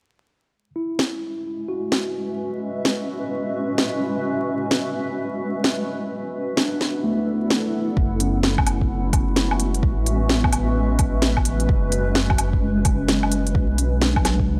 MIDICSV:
0, 0, Header, 1, 5, 480
1, 0, Start_track
1, 0, Key_signature, 3, "minor"
1, 0, Tempo, 465116
1, 543, Time_signature, 4, 2, 24, 8
1, 15065, End_track
2, 0, Start_track
2, 0, Title_t, "Ambient pad"
2, 0, Program_c, 0, 92
2, 543, Note_on_c, 0, 56, 78
2, 727, Note_on_c, 0, 76, 78
2, 747, Note_on_c, 0, 61, 86
2, 1180, Note_on_c, 0, 66, 80
2, 1274, Note_on_c, 0, 71, 70
2, 2455, Note_on_c, 0, 45, 82
2, 4379, Note_off_c, 0, 45, 0
2, 6301, Note_on_c, 0, 59, 77
2, 6303, Note_off_c, 0, 56, 0
2, 6306, Note_off_c, 0, 61, 0
2, 6476, Note_on_c, 0, 64, 84
2, 6659, Note_on_c, 0, 69, 87
2, 7083, Note_off_c, 0, 76, 0
2, 7086, Note_off_c, 0, 66, 0
2, 7087, Note_off_c, 0, 71, 0
2, 7187, Note_on_c, 0, 78, 90
2, 8219, Note_on_c, 0, 56, 85
2, 8223, Note_off_c, 0, 69, 0
2, 8268, Note_on_c, 0, 61, 91
2, 8354, Note_on_c, 0, 66, 84
2, 8833, Note_on_c, 0, 76, 66
2, 9001, Note_off_c, 0, 78, 0
2, 9003, Note_off_c, 0, 59, 0
2, 9005, Note_off_c, 0, 64, 0
2, 9113, Note_on_c, 0, 71, 87
2, 13978, Note_on_c, 0, 59, 73
2, 13981, Note_off_c, 0, 56, 0
2, 13982, Note_off_c, 0, 61, 0
2, 14212, Note_on_c, 0, 78, 78
2, 14242, Note_on_c, 0, 64, 81
2, 14639, Note_off_c, 0, 71, 0
2, 14762, Note_off_c, 0, 66, 0
2, 14765, Note_off_c, 0, 76, 0
2, 15065, Note_off_c, 0, 59, 0
2, 15065, Note_off_c, 0, 64, 0
2, 15065, Note_off_c, 0, 78, 0
2, 15065, End_track
3, 0, Start_track
3, 0, Title_t, "Tine electric piano"
3, 0, Program_c, 1, 4
3, 728, Control_c, 1, 64, 127
3, 782, Note_on_c, 1, 64, 62
3, 1738, Note_on_c, 1, 66, 58
3, 1906, Note_off_c, 1, 64, 0
3, 2476, Control_c, 1, 64, 0
3, 2659, Note_off_c, 1, 66, 0
3, 6470, Control_c, 1, 64, 127
3, 6784, Note_on_c, 1, 62, 77
3, 7263, Note_on_c, 1, 57, 76
3, 7907, Note_off_c, 1, 62, 0
3, 8234, Control_c, 1, 64, 0
3, 8386, Note_off_c, 1, 57, 0
3, 8391, Control_c, 1, 64, 127
3, 8464, Note_on_c, 1, 61, 59
3, 9587, Note_off_c, 1, 61, 0
3, 10156, Control_c, 1, 64, 0
3, 10308, Control_c, 1, 64, 127
3, 10624, Note_on_c, 1, 59, 69
3, 11747, Note_off_c, 1, 59, 0
3, 12076, Control_c, 1, 64, 0
3, 12265, Control_c, 1, 64, 127
3, 13021, Note_on_c, 1, 56, 77
3, 13994, Control_c, 1, 64, 0
3, 14145, Note_off_c, 1, 56, 0
3, 14156, Control_c, 1, 64, 127
3, 14466, Note_on_c, 1, 62, 63
3, 14675, Note_on_c, 1, 54, 51
3, 14812, Note_on_c, 1, 56, 53
3, 15065, Note_off_c, 1, 54, 0
3, 15065, Note_off_c, 1, 56, 0
3, 15065, Note_off_c, 1, 62, 0
3, 15065, End_track
4, 0, Start_track
4, 0, Title_t, "Detuned saw bass"
4, 0, Program_c, 2, 39
4, 8223, Note_on_c, 2, 30, 95
4, 10132, Note_off_c, 2, 30, 0
4, 10144, Note_on_c, 2, 33, 96
4, 11092, Note_off_c, 2, 33, 0
4, 11104, Note_on_c, 2, 33, 91
4, 11812, Note_off_c, 2, 33, 0
4, 11823, Note_on_c, 2, 33, 77
4, 12049, Note_off_c, 2, 33, 0
4, 12063, Note_on_c, 2, 30, 94
4, 13972, Note_off_c, 2, 30, 0
4, 13982, Note_on_c, 2, 35, 93
4, 14945, Note_on_c, 2, 37, 95
4, 14961, Note_off_c, 2, 35, 0
4, 15065, Note_off_c, 2, 37, 0
4, 15065, End_track
5, 0, Start_track
5, 0, Title_t, "Drums"
5, 1022, Note_on_c, 9, 38, 92
5, 1125, Note_off_c, 9, 38, 0
5, 1981, Note_on_c, 9, 38, 94
5, 2084, Note_off_c, 9, 38, 0
5, 2941, Note_on_c, 9, 38, 97
5, 3044, Note_off_c, 9, 38, 0
5, 3902, Note_on_c, 9, 38, 96
5, 4006, Note_off_c, 9, 38, 0
5, 4861, Note_on_c, 9, 38, 101
5, 4964, Note_off_c, 9, 38, 0
5, 5822, Note_on_c, 9, 38, 100
5, 5926, Note_off_c, 9, 38, 0
5, 6782, Note_on_c, 9, 38, 103
5, 6885, Note_off_c, 9, 38, 0
5, 7026, Note_on_c, 9, 38, 57
5, 7129, Note_off_c, 9, 38, 0
5, 7745, Note_on_c, 9, 38, 99
5, 7848, Note_off_c, 9, 38, 0
5, 8223, Note_on_c, 9, 36, 103
5, 8326, Note_off_c, 9, 36, 0
5, 8463, Note_on_c, 9, 42, 53
5, 8566, Note_off_c, 9, 42, 0
5, 8703, Note_on_c, 9, 38, 98
5, 8806, Note_off_c, 9, 38, 0
5, 8856, Note_on_c, 9, 36, 94
5, 8856, Note_on_c, 9, 77, 60
5, 8942, Note_off_c, 9, 77, 0
5, 8942, Note_on_c, 9, 42, 54
5, 8942, Note_on_c, 9, 77, 54
5, 8959, Note_off_c, 9, 36, 0
5, 9046, Note_off_c, 9, 42, 0
5, 9046, Note_off_c, 9, 77, 0
5, 9096, Note_on_c, 9, 36, 55
5, 9199, Note_off_c, 9, 36, 0
5, 9423, Note_on_c, 9, 36, 100
5, 9423, Note_on_c, 9, 42, 53
5, 9423, Note_on_c, 9, 77, 37
5, 9526, Note_off_c, 9, 36, 0
5, 9527, Note_off_c, 9, 42, 0
5, 9527, Note_off_c, 9, 77, 0
5, 9663, Note_on_c, 9, 38, 99
5, 9663, Note_on_c, 9, 42, 30
5, 9766, Note_off_c, 9, 38, 0
5, 9766, Note_off_c, 9, 42, 0
5, 9817, Note_on_c, 9, 77, 59
5, 9903, Note_on_c, 9, 42, 53
5, 9920, Note_off_c, 9, 77, 0
5, 10006, Note_off_c, 9, 42, 0
5, 10056, Note_on_c, 9, 42, 30
5, 10143, Note_on_c, 9, 36, 108
5, 10160, Note_off_c, 9, 42, 0
5, 10246, Note_off_c, 9, 36, 0
5, 10386, Note_on_c, 9, 42, 54
5, 10489, Note_off_c, 9, 42, 0
5, 10624, Note_on_c, 9, 38, 103
5, 10727, Note_off_c, 9, 38, 0
5, 10775, Note_on_c, 9, 77, 58
5, 10776, Note_on_c, 9, 36, 101
5, 10862, Note_off_c, 9, 77, 0
5, 10862, Note_on_c, 9, 42, 54
5, 10862, Note_on_c, 9, 77, 50
5, 10879, Note_off_c, 9, 36, 0
5, 10965, Note_off_c, 9, 42, 0
5, 10965, Note_off_c, 9, 77, 0
5, 11340, Note_on_c, 9, 42, 56
5, 11340, Note_on_c, 9, 77, 36
5, 11343, Note_on_c, 9, 36, 104
5, 11443, Note_off_c, 9, 42, 0
5, 11443, Note_off_c, 9, 77, 0
5, 11447, Note_off_c, 9, 36, 0
5, 11579, Note_on_c, 9, 38, 103
5, 11579, Note_on_c, 9, 42, 29
5, 11682, Note_off_c, 9, 38, 0
5, 11682, Note_off_c, 9, 42, 0
5, 11731, Note_on_c, 9, 77, 54
5, 11736, Note_on_c, 9, 36, 63
5, 11818, Note_on_c, 9, 42, 52
5, 11835, Note_off_c, 9, 77, 0
5, 11840, Note_off_c, 9, 36, 0
5, 11922, Note_off_c, 9, 42, 0
5, 11970, Note_on_c, 9, 42, 31
5, 12063, Note_on_c, 9, 36, 114
5, 12073, Note_off_c, 9, 42, 0
5, 12166, Note_off_c, 9, 36, 0
5, 12301, Note_on_c, 9, 42, 53
5, 12404, Note_off_c, 9, 42, 0
5, 12540, Note_on_c, 9, 38, 104
5, 12643, Note_off_c, 9, 38, 0
5, 12692, Note_on_c, 9, 77, 55
5, 12696, Note_on_c, 9, 36, 100
5, 12780, Note_off_c, 9, 77, 0
5, 12780, Note_on_c, 9, 42, 56
5, 12780, Note_on_c, 9, 77, 48
5, 12799, Note_off_c, 9, 36, 0
5, 12883, Note_off_c, 9, 42, 0
5, 12883, Note_off_c, 9, 77, 0
5, 12934, Note_on_c, 9, 36, 60
5, 13038, Note_off_c, 9, 36, 0
5, 13261, Note_on_c, 9, 42, 56
5, 13261, Note_on_c, 9, 77, 34
5, 13262, Note_on_c, 9, 36, 106
5, 13364, Note_off_c, 9, 42, 0
5, 13364, Note_off_c, 9, 77, 0
5, 13365, Note_off_c, 9, 36, 0
5, 13503, Note_on_c, 9, 38, 105
5, 13503, Note_on_c, 9, 42, 30
5, 13606, Note_off_c, 9, 38, 0
5, 13606, Note_off_c, 9, 42, 0
5, 13655, Note_on_c, 9, 77, 55
5, 13742, Note_on_c, 9, 42, 52
5, 13758, Note_off_c, 9, 77, 0
5, 13845, Note_off_c, 9, 42, 0
5, 13897, Note_on_c, 9, 42, 29
5, 13982, Note_on_c, 9, 36, 110
5, 14000, Note_off_c, 9, 42, 0
5, 14085, Note_off_c, 9, 36, 0
5, 14223, Note_on_c, 9, 42, 49
5, 14326, Note_off_c, 9, 42, 0
5, 14463, Note_on_c, 9, 38, 105
5, 14567, Note_off_c, 9, 38, 0
5, 14616, Note_on_c, 9, 36, 99
5, 14616, Note_on_c, 9, 77, 55
5, 14705, Note_off_c, 9, 77, 0
5, 14705, Note_on_c, 9, 38, 59
5, 14705, Note_on_c, 9, 42, 50
5, 14705, Note_on_c, 9, 77, 47
5, 14719, Note_off_c, 9, 36, 0
5, 14808, Note_off_c, 9, 38, 0
5, 14808, Note_off_c, 9, 42, 0
5, 14808, Note_off_c, 9, 77, 0
5, 14856, Note_on_c, 9, 36, 57
5, 14959, Note_off_c, 9, 36, 0
5, 15065, End_track
0, 0, End_of_file